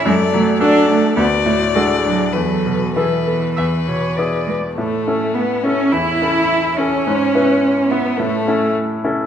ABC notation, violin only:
X:1
M:4/4
L:1/8
Q:1/4=105
K:A
V:1 name="Violin"
d2 d2 d4 | B2 B2 B3 z | A,2 B, C E3 C- | C3 B, A,2 z2 |]